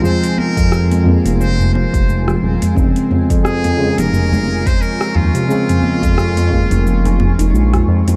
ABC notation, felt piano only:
X:1
M:4/4
L:1/8
Q:"Swing 16ths" 1/4=88
K:Bbdor
V:1 name="Felt piano" clef=bass
[F,A,C]3 [F,A,B,]4- [F,A,B,] | [D,A,C]3 [D,A,]4- [D,A,] | [D,A,C]3 [D,A,B,]4- [D,A,B,] |]